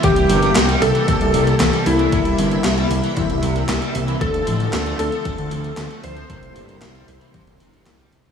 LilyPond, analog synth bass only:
\new Staff \with { instrumentName = "Analog synth bass" } { \clef bass \time 4/4 \key c \mixolydian \tempo 4 = 115 c,8 g,,8 c,8 c,16 r16 c,16 c,16 c,8 c,16 r16 c,8 | c,8 g,,8 c,8 c,16 r16 c,16 c,16 c,8 c,16 r16 c,8 | d,8 a,,8 d,8 d,16 r16 d,16 d,16 d,8 d,16 r16 d,8 | c,8 g,,8 c,8 c,16 r16 c,16 c,16 g,,8 c,8 c,16 r16 | }